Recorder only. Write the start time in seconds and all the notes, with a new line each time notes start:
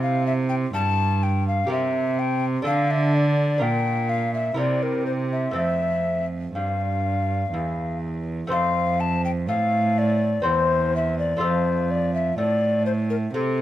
0.02 F5
0.27 E5
0.49 G5
0.74 A5
1.23 G5
1.48 F5
1.72 E5
2.19 G5
2.66 F5
2.91 E5
3.15 D5
3.62 G5
4.09 F5
4.34 E5
4.58 D5
4.83 A#4
5.06 C5
5.32 E5
5.57 E5
6.55 F5
8.52 F5
9.00 A5
9.25 G5
9.48 F5
9.98 D5
10.46 C5
10.96 E5
11.19 D5
11.43 C5
11.91 D5
12.14 E5
12.37 D5
12.86 C5
13.10 A#4
13.34 A4